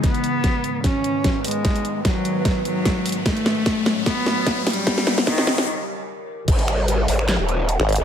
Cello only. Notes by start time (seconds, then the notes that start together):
0.04 B3
0.84 C#4
1.44 G#3
2.05 F#3
2.65 F#3
3.26 A3
4.06 B3
4.67 G3
5.27 D#3